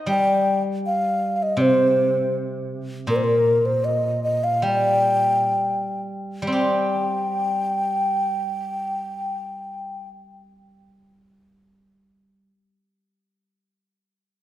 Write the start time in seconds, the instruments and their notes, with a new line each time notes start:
0.06 guzheng G3, xiao G5
0.86 xiao F5
1.36 xiao F5
1.43 xiao D#5
1.57 guzheng C3
1.61 xiao C5
3.07 guzheng A#2, xiao A#4
3.16 xiao C5
3.24 xiao A#4
3.65 xiao C5
3.85 xiao D#5
4.24 xiao D#5
4.44 xiao F5
4.62 guzheng G3, xiao G5
6.42 guzheng G3
6.47 guzheng C4
6.52 guzheng G4, xiao G5